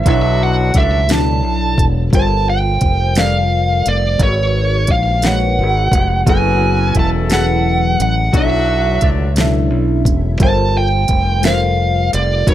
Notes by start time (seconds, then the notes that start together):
0.05 B1 B2 F#3 D4 E4 F#4 E5, kick, closed hi-hat
0.09 A4 C#5
0.43 F#5
0.74 C#2 D3 F#3 A3 D4 E5, kick, closed hi-hat
1.08 B2 F#3 D4 E4 A5, snare, closed hi-hat
1.12 A4 D5
1.45 B1
1.78 E1, kick, closed hi-hat
2.11 G1 G3 F4 A4 A#4 A5, kick, closed hi-hat
2.16 C5
2.50 G5
2.81 F1, kick, closed hi-hat
3.15 G3 F4 A4 A#4, snare, closed hi-hat
3.19 D5 F5
3.86 F1 D5, closed hi-hat
4.18 G#1 G#3 D#4 F#4 A#4, kick, closed hi-hat
4.22 B4 C#5
4.87 A#1, kick, closed hi-hat
4.92 F5
5.22 G#3 D#4 F#4 A#4, snare, closed hi-hat
5.26 B4 C#5 F#5
5.59 G#1
5.92 F1, kick, closed hi-hat
6.25 F#1 F#3 B3 C#4 E4 F#4 G#4 A4, kick, closed hi-hat
6.30 B4 G#5
6.95 E1 A3 C#4 E4 A4, kick, closed hi-hat
6.99 A5
7.29 F#3 E4 G#4 A4, snare, closed hi-hat
7.33 B4 F#5
8.00 A1 F#5, closed hi-hat
8.32 B1 B2 F#3 D4 E4 F#4, kick, closed hi-hat
8.36 A4 C#5 E5
9.01 C#2 D3 F#3 A3 D4, kick, closed hi-hat
9.36 B2 F#3 C#4 E4 A4, snare, closed hi-hat
9.41 D4 E5
9.73 B1
10.05 E1, kick, closed hi-hat
10.39 G1 G3 F4 A4 A#4 A5, kick, closed hi-hat
10.44 C5
10.77 G5
11.08 F1, kick, closed hi-hat
11.42 G3 F4 A4 A#4 F5, snare, closed hi-hat
11.47 C5
12.13 F1 D5, closed hi-hat
12.46 G#1 G#3 D#4 F#4 A#4 B4 C#5, kick, closed hi-hat
12.51 C5